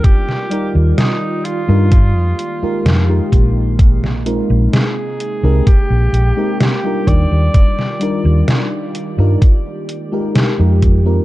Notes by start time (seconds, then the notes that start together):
Already playing: D#3 G3 D4 D#4 F4 A#4 D5
0.04 G4, kick, closed hi-hat
0.29 snare
0.49 G3 D#4 F4 A#4 D5, closed hi-hat
0.75 D#2
0.98 D#4, snare, closed hi-hat
1.45 F4, closed hi-hat
1.68 G2 G3 D4 D#4 F4 A#4
1.91 G#3 A#3 G4, kick, closed hi-hat
2.16 F2
2.39 closed hi-hat
2.62 G#3 D#4 F4 G4 A#4, muted fingered electric bass stroke
2.85 F2, snare, closed hi-hat
3.09 G#3 D#4 F4 G4 A#4
3.32 A#1, kick, closed hi-hat
3.79 C3 D#4, kick, closed hi-hat
4.04 snare
4.25 G#3 C4 D#4 F4 A#4, closed hi-hat
4.50 A#1
4.73 G#4, snare, closed hi-hat
5.20 A#3 G5, closed hi-hat
5.43 C2 G#3 C4 D#4 G4 A#4
5.67 G4, muted fingered electric bass stroke, kick, closed hi-hat
5.90 A#1
6.13 A#1, closed hi-hat
6.37 G#3 C4 D#4 G4 A#4
6.61 G4, snare, closed hi-hat
6.83 G3 D4 D#4 F4 A#4
7.07 D#2 D#3 G3 F4 D5, kick, closed hi-hat
7.31 D#2
7.54 kick, closed hi-hat
7.79 snare
7.99 G3 D4 D#4 F4 A#4, closed hi-hat
8.25 D#2
8.48 snare, closed hi-hat
8.95 closed hi-hat
9.18 G2 G3 D4 D#4 F4 A#4
9.42 D#3 G#3 A#3 G4, kick, closed hi-hat
9.89 closed hi-hat
10.12 G#3 D#4 F4 G4 A#4
10.35 snare, closed hi-hat
10.58 F2 G#3 D#4 F4 G4 A#4
10.82 kick, closed hi-hat
11.05 G#3 C4 D#4 F4 A#4